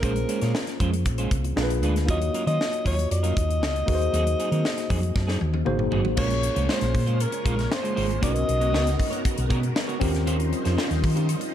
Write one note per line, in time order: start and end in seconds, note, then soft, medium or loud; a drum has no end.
0.00 0.23 A#1 medium
0.00 0.16 G#3 medium
0.00 1.53 A#3 medium
0.00 1.54 C#4 medium
0.00 0.15 C#4 medium
0.00 1.54 F4 medium
0.00 0.15 F4 medium
0.00 1.54 G#4 medium
0.00 0.81 A#4 medium
0.00 0.14 C5 medium
0.00 kick loud
0.00 closed hi-hat medium
0.04 1.55 C5 medium
0.16 muted clean electric guitar stroke soft
0.16 closed hi-hat medium
0.28 0.39 G#3 medium
0.28 0.39 C#4 medium
0.28 0.39 F4 medium
0.28 0.40 C5 medium
0.28 closed hi-hat medium
0.41 0.52 A#2 medium
0.41 0.53 G#3 soft
0.41 0.52 C#4 soft
0.41 0.52 F4 medium
0.41 0.52 C#5 medium
0.41 snare soft
0.41 closed hi-hat medium
0.55 snare medium
0.67 muted clean electric guitar stroke soft
0.67 snare soft
0.67 closed hi-hat soft
0.80 1.07 F2 medium
0.80 0.93 G#3 medium
0.80 0.92 C#4 medium
0.80 0.92 F4 medium
0.80 0.91 C5 medium
0.80 kick medium
0.80 closed hi-hat medium
0.93 muted clean electric guitar stroke soft
0.93 closed hi-hat medium
1.06 1.26 A#1 medium
1.06 muted clean electric guitar stroke soft
1.06 kick medium
1.06 closed hi-hat medium
1.18 1.31 G#3 medium
1.18 1.31 C#4 medium
1.18 1.31 F4 medium
1.18 1.32 C5 medium
1.18 closed hi-hat medium
1.31 1.52 C2 loud
1.31 muted clean electric guitar stroke soft
1.31 kick medium
1.31 closed hi-hat medium
1.44 muted clean electric guitar stroke soft
1.44 closed hi-hat soft
1.56 1.83 A#1 medium
1.56 2.05 A#3 medium
1.56 2.08 D4 medium
1.56 2.06 F4 medium
1.56 2.08 G#4 medium
1.56 1.63 A#4 medium
1.56 muted clean electric guitar stroke soft
1.56 snare loud
1.63 2.11 B4 medium
1.69 muted clean electric guitar stroke soft
1.69 closed hi-hat medium
1.83 2.09 D2 medium
1.83 1.96 G#3 medium
1.83 1.96 D4 medium
1.83 1.95 F4 medium
1.83 1.95 B4 medium
1.83 closed hi-hat medium
1.96 muted clean electric guitar stroke soft
1.96 snare soft
1.96 closed hi-hat soft
2.06 2.29 D#2 loud
2.06 2.21 F#3 medium
2.06 3.83 A#3 medium
2.06 2.21 C#4 medium
2.06 3.84 D#4 medium
2.06 3.84 F4 medium
2.06 2.20 F4 medium
2.06 3.84 F#4 medium
2.06 2.20 A#4 medium
2.06 3.85 C#5 medium
2.06 kick loud
2.06 closed hi-hat medium
2.10 2.45 D#5 medium
2.21 muted clean electric guitar stroke soft
2.21 closed hi-hat medium
2.34 2.44 F#3 medium
2.34 2.45 C#4 medium
2.34 2.45 F4 medium
2.34 2.45 A#4 medium
2.34 closed hi-hat medium
2.46 2.57 D#3 medium
2.46 2.58 F#3 soft
2.46 2.57 C#4 soft
2.46 2.57 F4 medium
2.46 2.57 C5 medium
2.46 2.83 D#5 loud
2.46 closed hi-hat medium
2.61 snare medium
2.72 muted clean electric guitar stroke soft
2.72 closed hi-hat soft
2.85 3.06 D#2 medium
2.85 2.98 F#3 medium
2.85 2.97 C#4 medium
2.85 2.97 F4 medium
2.85 2.96 A#4 medium
2.85 3.10 C#5 medium
2.85 kick medium
2.85 open hi-hat medium
2.97 muted clean electric guitar stroke soft
2.97 closed hi-hat medium
3.10 3.31 F2 medium
3.10 5.64 D#5 loud
3.10 muted clean electric guitar stroke soft
3.10 closed hi-hat medium
3.23 3.35 F#3 medium
3.23 3.36 C#4 medium
3.23 3.36 F4 medium
3.23 3.36 A#4 medium
3.23 closed hi-hat medium
3.36 3.62 D#2 medium
3.36 muted clean electric guitar stroke soft
3.36 kick medium
3.36 closed hi-hat medium
3.49 muted clean electric guitar stroke soft
3.49 closed hi-hat soft
3.61 3.82 C#2 medium
3.61 muted clean electric guitar stroke soft
3.61 snare loud
3.74 muted clean electric guitar stroke soft
3.74 closed hi-hat soft
3.86 4.08 D#2 medium
3.86 5.63 A#3 medium
3.86 5.63 D#4 medium
3.86 5.63 F#4 medium
3.86 5.64 G#4 medium
3.86 3.95 B4 medium
3.86 kick medium
3.86 open hi-hat medium
3.95 5.65 C5 medium
4.00 muted clean electric guitar stroke soft
4.00 closed hi-hat soft
4.13 4.34 D#2 medium
4.13 4.27 F#3 medium
4.13 4.25 C4 medium
4.13 4.25 D#4 medium
4.13 4.25 G#4 medium
4.13 closed hi-hat medium
4.26 muted clean electric guitar stroke soft
4.26 closed hi-hat medium
4.39 4.49 F#3 medium
4.39 4.50 C4 medium
4.39 4.50 D#4 medium
4.39 4.50 G#4 medium
4.39 closed hi-hat medium
4.52 4.62 D#3 medium
4.52 4.63 F#3 soft
4.52 4.63 C4 soft
4.52 4.63 D#4 medium
4.52 4.62 A#4 medium
4.52 closed hi-hat soft
4.65 snare medium
4.77 muted clean electric guitar stroke soft
4.77 snare soft
4.77 closed hi-hat soft
4.89 5.10 F2 loud
4.89 5.03 F#3 medium
4.89 5.02 C4 medium
4.89 5.02 D#4 medium
4.89 5.01 G#4 medium
4.89 kick medium
4.89 open hi-hat medium
5.02 muted clean electric guitar stroke soft
5.02 closed hi-hat medium
5.15 5.36 F#2 medium
5.15 muted clean electric guitar stroke soft
5.15 kick medium
5.15 snare soft
5.27 5.39 F#3 medium
5.27 5.40 C4 medium
5.27 5.40 D#4 medium
5.27 5.40 G#4 medium
5.27 snare medium
5.40 5.62 D#2 medium
5.40 muted clean electric guitar stroke soft
5.40 high tom medium
5.53 muted clean electric guitar stroke medium
5.53 high tom medium
5.66 5.87 G#1 medium
5.66 6.15 A#3 medium
5.66 6.18 D#4 medium
5.66 6.18 F#4 medium
5.66 6.17 G#4 medium
5.66 6.18 C5 medium
5.66 muted clean electric guitar stroke soft
5.66 mid tom medium
5.78 muted clean electric guitar stroke soft
5.78 mid tom medium
5.91 6.13 G#1 medium
5.91 6.05 F#3 medium
5.91 6.04 C4 medium
5.91 6.03 D#4 medium
5.91 6.03 G#4 loud
5.91 floor tom medium
6.04 muted clean electric guitar stroke soft
6.04 floor tom medium
6.16 6.48 A#1 medium
6.16 11.54 C#3 medium
6.16 6.31 G#3 medium
6.16 9.98 G#3 medium
6.16 8.18 A#3 medium
6.16 8.21 A#3 medium
6.16 8.18 C#4 medium
6.16 6.29 C#4 medium
6.16 8.21 C#4 medium
6.16 8.18 F4 medium
6.16 6.29 F4 medium
6.16 8.21 F4 medium
6.16 8.19 G#4 medium
6.16 8.19 A#4 medium
6.16 6.28 C5 medium
6.16 6.66 C#5 medium
6.16 kick loud
6.16 crash medium
6.29 muted clean electric guitar stroke soft
6.29 closed hi-hat soft
6.43 muted clean electric guitar stroke soft
6.43 closed hi-hat medium
6.55 6.67 C2 medium
6.55 6.67 G#3 soft
6.55 6.67 C#4 soft
6.55 6.67 F4 medium
6.55 6.66 C5 medium
6.55 closed hi-hat medium
6.68 6.82 G#3 medium
6.68 6.81 C#4 medium
6.68 6.81 F4 medium
6.68 6.80 C5 medium
6.68 7.22 C5 medium
6.68 snare medium
6.81 6.92 A#1 loud
6.81 muted clean electric guitar stroke soft
6.81 snare soft
6.81 closed hi-hat soft
6.94 7.25 A#2 medium
6.94 muted clean electric guitar stroke soft
6.94 kick medium
6.94 open hi-hat medium
7.06 7.18 G#3 soft
7.06 7.18 C#4 medium
7.06 7.18 F4 medium
7.06 7.18 C5 medium
7.06 closed hi-hat medium
7.20 7.74 A#4 medium
7.20 closed hi-hat medium
7.32 muted clean electric guitar stroke soft
7.32 closed hi-hat medium
7.44 7.66 A#1 medium
7.44 7.59 G#3 medium
7.44 7.56 C#4 medium
7.44 7.56 F4 loud
7.44 7.56 C5 medium
7.44 kick medium
7.44 closed hi-hat medium
7.57 muted clean electric guitar stroke soft
7.57 snare soft
7.57 closed hi-hat soft
7.70 8.23 C5 medium
7.70 muted clean electric guitar stroke soft
7.70 snare loud
7.82 7.94 G#3 soft
7.82 7.94 C#4 medium
7.82 7.94 F4 medium
7.82 7.94 C5 medium
7.82 closed hi-hat soft
7.95 8.18 G#1 medium
7.95 8.10 G#3 medium
7.95 8.08 C#4 medium
7.95 8.08 F4 medium
7.95 8.07 C5 medium
7.95 open hi-hat medium
8.08 muted clean electric guitar stroke medium
8.08 closed hi-hat medium
8.21 8.43 B1 loud
8.21 8.28 A#3 soft
8.21 8.35 B3 medium
8.21 10.00 B3 medium
8.21 9.98 C#4 medium
8.21 9.98 D#4 medium
8.21 8.34 F#4 medium
8.21 9.99 F#4 medium
8.21 9.98 F#4 medium
8.21 8.34 A#4 medium
8.21 10.00 A#4 medium
8.21 9.99 A#4 medium
8.21 8.33 C#5 loud
8.21 9.21 D#5 loud
8.21 kick loud
8.21 closed hi-hat loud
8.28 10.01 B3 medium
8.35 muted clean electric guitar stroke soft
8.35 closed hi-hat medium
8.47 8.74 B1 loud
8.47 muted clean electric guitar stroke soft
8.47 closed hi-hat medium
8.60 8.71 B3 soft
8.60 8.72 F#4 medium
8.60 8.71 A#4 medium
8.60 8.71 C#5 medium
8.60 closed hi-hat soft
8.73 8.94 C#2 medium
8.73 8.87 B3 medium
8.73 8.85 F#4 medium
8.73 8.85 A#4 medium
8.73 8.84 C#5 medium
8.73 snare medium
8.85 muted clean electric guitar stroke soft
8.85 snare soft
8.85 closed hi-hat medium
8.98 muted clean electric guitar stroke soft
8.98 kick medium
8.98 open hi-hat medium
9.10 9.22 B3 soft
9.10 9.22 F#4 soft
9.10 9.22 A#4 soft
9.10 9.22 C#5 medium
9.10 closed hi-hat medium
9.25 kick medium
9.25 closed hi-hat medium
9.36 9.48 B1 medium
9.36 muted clean electric guitar stroke medium
9.36 closed hi-hat medium
9.49 9.71 B2 loud
9.49 9.63 B3 medium
9.49 9.61 F#4 medium
9.49 9.61 A#4 medium
9.49 9.61 C#5 medium
9.49 kick medium
9.49 closed hi-hat medium
9.62 muted clean electric guitar stroke medium
9.62 closed hi-hat medium
9.75 muted clean electric guitar stroke soft
9.75 snare loud
9.87 9.99 B3 soft
9.87 9.99 F#4 medium
9.87 9.99 A#4 medium
9.87 9.99 C#5 medium
9.87 closed hi-hat soft
10.00 10.52 D#2 loud
10.00 11.54 F3 medium
10.00 11.54 G3 medium
10.00 11.51 C4 medium
10.00 10.14 C#4 medium
10.00 11.51 C#4 medium
10.00 11.54 D#4 medium
10.00 10.13 F4 medium
10.00 11.51 F4 medium
10.00 10.13 G4 loud
10.00 11.52 G4 medium
10.00 11.52 A#4 medium
10.00 11.54 C5 medium
10.00 10.13 C5 medium
10.00 kick loud
10.00 open hi-hat medium
10.14 muted clean electric guitar stroke soft
10.14 snare soft
10.14 closed hi-hat soft
10.26 10.40 C#4 medium
10.26 10.39 F4 loud
10.26 10.38 G4 loud
10.26 10.38 C5 loud
10.26 closed hi-hat loud
10.39 muted clean electric guitar stroke soft
10.39 closed hi-hat medium
10.52 muted clean electric guitar stroke soft
10.52 closed hi-hat medium
10.64 10.76 F2 medium
10.64 10.75 C#4 medium
10.64 10.76 F4 medium
10.64 10.76 G4 medium
10.64 10.75 C5 medium
10.64 snare soft
10.64 closed hi-hat medium
10.77 10.91 C#4 medium
10.77 10.89 F4 medium
10.77 10.89 G4 medium
10.77 10.88 C5 medium
10.77 snare medium
10.90 11.01 D#2 loud
10.90 muted clean electric guitar stroke soft
10.90 snare soft
10.90 closed hi-hat soft
11.02 11.34 D#3 loud
11.02 muted clean electric guitar stroke soft
11.02 kick medium
11.02 open hi-hat medium
11.15 11.27 C#4 soft
11.15 11.27 F4 medium
11.15 11.26 G4 medium
11.15 11.26 C5 medium
11.15 closed hi-hat medium
11.29 closed hi-hat medium
11.40 muted clean electric guitar stroke medium
11.40 closed hi-hat medium